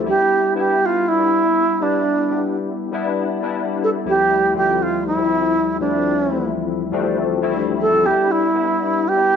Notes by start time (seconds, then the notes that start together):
0.05 G3 B3 D4 E4 G4
0.54 G3 B3 D4 E4
0.59 G4
0.86 F4
1.08 E4
1.18 G3 B3 D4 G4
1.80 G3 B3 D4 E4
2.30 G3 B3 D4 G4
2.92 G3 B3 D4 E4
3.42 G3 B3 D4 E4
3.84 A4
4.05 D2 F3 G3 A3 C4 E4 G4
4.54 D2 F3 G3 A3 C4 F4 G4
4.83 F4
5.07 E4
5.17 D2 F3 G3 A3 C4 E4
5.79 D2 F3 G3 A3 C4 D4 E4
6.29 D2 E3 G3 A3 C4 E4
6.36 F3
6.92 D2 F3 G3 A3 C4 D4
7.42 D2 F3 G3 A3 C4 E4
7.81 A4
8.03 G3 B3 D4 E4 G4
8.31 E4
8.54 G3 B3 D4 E4
9.08 G4
9.16 G3 B3 D4 E4